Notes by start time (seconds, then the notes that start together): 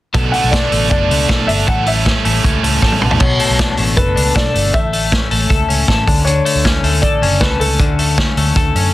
0.14 B1 B2 F#3 A3 D4 A4, kick, closed hi-hat
0.32 A3 D4 A4 F#5, open hi-hat
0.36 A3
0.44 B1
0.51 F#3 A3 D4 D5, kick, snare, closed hi-hat
0.55 D4 A4
0.70 A1 A3 D4 A4, open hi-hat
0.89 F#1 B2 F#3 A3 D4 A4 D5, kick, closed hi-hat
1.10 C#2 A3 D4 A4, open hi-hat
1.29 B1 F#3 A3 D4 A4, kick, snare, closed hi-hat
1.47 G1 D4 A4 E5, open hi-hat
1.51 A3
1.67 A1 A2 E3 G3 A3 C#4 A4 F#5, kick
1.86 G3 A3 C#4 A4 E5, open hi-hat
2.05 G3 A3 C#4, kick, snare, closed hi-hat
2.09 A4
2.25 A1 G3 A3 C#4 A4, open hi-hat
2.44 C#2 A2 E3 G3 A3 C#4 A4, kick, closed hi-hat
2.63 C#2 G3 A3 C#4 A4, open hi-hat
2.82 A1 G3 A3 C#4 A4, kick, snare
2.92 high tom
3.01 B1 B2 A3 D4 A4, mid tom
3.11 floor tom
3.20 B1 B2 C#5, kick, crash
3.39 A3, open hi-hat
3.49 B1
3.59 D4, kick, snare, closed hi-hat
3.77 A1 A3, open hi-hat
3.97 F#1 A4 B4, kick, closed hi-hat
4.16 C#2 D4, open hi-hat
4.35 B1 A4 D5, kick, snare, closed hi-hat
4.54 G1 A3, open hi-hat
4.74 A1 A2 E5, kick, closed hi-hat
4.93 A3, open hi-hat
5.12 C#4, kick, snare, closed hi-hat
5.31 A1 A3, open hi-hat
5.50 C#2 A4, kick, closed hi-hat
5.69 C#2 C#4, open hi-hat
5.88 A1 A4, kick, snare, closed hi-hat
6.07 D2 D3, kick, open hi-hat
6.25 D3 C#5, closed hi-hat
6.45 A3, open hi-hat
6.55 D2
6.65 C#4, kick, snare, closed hi-hat
6.83 D2 A3, open hi-hat
7.02 A1 A4 D5, kick, closed hi-hat
7.22 F#1 C#4, open hi-hat
7.40 C#2 A4 B4, kick, snare, closed hi-hat
7.60 C#2 A3 A4, open hi-hat
7.79 D2 D3, kick, closed hi-hat
7.99 A3, open hi-hat
8.18 C#4, kick, snare, closed hi-hat
8.37 D2 A3, open hi-hat
8.56 D2 A4, kick, closed hi-hat
8.75 F#2 C#4, open hi-hat